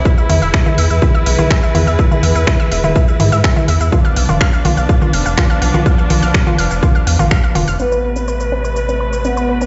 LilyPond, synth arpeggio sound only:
\new Staff \with { instrumentName = "Synth arpeggio sound" } { \time 4/4 \key a \minor \tempo 4 = 124 e''16 e''16 e'16 e''16 e''16 e'16 e''16 e''16 e'16 e''16 e''16 e'16 e''16 e''16 e'16 e''16 | e''16 e'16 e''16 e''16 e'16 e''16 e''16 e'16 e''16 e''16 e'16 e''16 e''16 e'16 e''16 e''16 | f'16 f''16 f''16 f'16 f''16 f''16 f'16 f''16 f''16 f'16 f''16 f''16 f'16 f''16 f''16 f'16 | f''16 f''16 f'16 f''16 f''16 f'16 f''16 f''16 f'16 f''16 f''16 f'16 f''16 f''16 f'16 f''16 |
c'16 b'16 b'16 c'16 b'16 b'16 c'16 b'16 b'16 c'16 b'16 b'16 c'16 b'16 b'16 c'16 | }